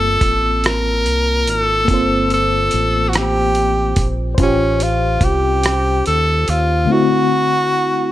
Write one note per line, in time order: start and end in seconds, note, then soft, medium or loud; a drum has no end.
0.00 0.18 G1 loud
0.00 1.83 A#3 medium
0.00 1.85 C4 soft
0.00 1.86 F4 soft
0.00 0.68 A4 loud
0.00 1.88 A5 medium
0.21 1.08 A1 medium
0.21 kick medium
0.21 closed hi-hat soft
0.64 1.51 A#4 medium
0.64 cross-stick loud
0.64 closed hi-hat medium
1.06 1.49 C2 medium
1.06 closed hi-hat soft
1.47 1.86 G#1 medium
1.47 2.32 A4 loud
1.47 closed hi-hat medium
1.85 4.33 A#3 medium
1.85 4.34 C4 medium
1.85 kick loud
1.85 closed hi-hat medium
1.89 2.68 G1 medium
1.89 4.36 F4 medium
1.94 4.33 C5 medium
2.30 3.10 A4 loud
2.30 closed hi-hat soft
2.71 3.94 A1 medium
2.71 closed hi-hat medium
3.09 3.19 F#4 medium
3.13 cross-stick loud
3.13 closed hi-hat medium
3.17 4.09 G4 loud
3.55 closed hi-hat soft
3.96 4.35 A#1 medium
3.96 kick medium
3.96 closed hi-hat medium
4.35 6.84 C#4 medium
4.35 6.83 C5 medium
4.35 kick loud
4.35 closed hi-hat medium
4.39 5.18 A1 medium
4.39 4.85 C#4 medium
4.39 6.85 F4 medium
4.43 6.87 G4 medium
4.80 5.26 F4 medium
4.80 closed hi-hat medium
5.21 6.01 C2 medium
5.21 6.06 G4 loud
5.21 kick medium
5.21 closed hi-hat soft
5.63 cross-stick loud
5.63 closed hi-hat medium
6.06 6.44 D#2 medium
6.06 6.52 A4 medium
6.06 closed hi-hat soft
6.48 6.85 D#2 medium
6.48 6.94 F4 medium
6.48 closed hi-hat medium
6.85 8.12 D3 medium
6.85 8.12 A3 medium
6.90 8.12 C4 medium
6.90 8.12 E4 medium
6.90 8.12 F#4 loud
6.90 8.12 F#4 medium